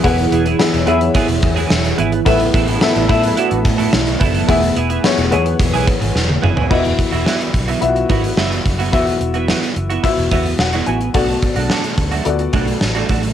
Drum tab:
CC |----------------|----------------|----------------|x---------------|
HH |xxxx-xxxxxxx-xxx|xxxx-xxxxxxx-xxx|xxxx-xxxxxxx----|-xxx-xxxxxxx-xxx|
TB |----x-------x---|----x-------x---|----x-----------|----------------|
SD |----o-------o---|----o-------o---|----o-------o---|----o-------o---|
T1 |----------------|----------------|-------------o--|----------------|
T2 |----------------|----------------|--------------o-|----------------|
FT |----------------|----------------|---------------o|----------------|
BD |o-------o-o-----|o-o---o---o---o-|o-------o-o-----|o-o---o---o---o-|

CC |----------------|----------------|
HH |xxxx-xxxxxxx-xxx|xxxx-xxxxxxx-xxx|
TB |----------------|----------------|
SD |----o-------o---|----o-------o---|
T1 |----------------|----------------|
T2 |----------------|----------------|
FT |----------------|----------------|
BD |o-------o-o-----|o-o---o---o---o-|